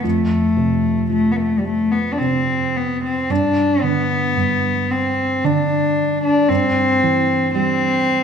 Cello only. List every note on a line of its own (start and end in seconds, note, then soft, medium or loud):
0.05 1.06 A3 medium
1.11 1.33 A3 medium
1.32 1.38 B3 soft
1.36 1.60 A3 medium
1.58 1.66 G3 soft
1.65 1.93 A3 medium
1.92 2.13 B3 medium
2.12 2.20 D4 soft
2.19 2.78 C4 medium
2.76 3.04 B3 medium
3.04 3.32 C4 medium
3.31 3.84 D4 medium
3.82 4.92 B3 medium
4.91 5.46 C4 medium
5.45 6.23 D4 medium
6.24 6.50 D4 medium
6.49 7.53 C4 medium
7.54 8.23 C4 medium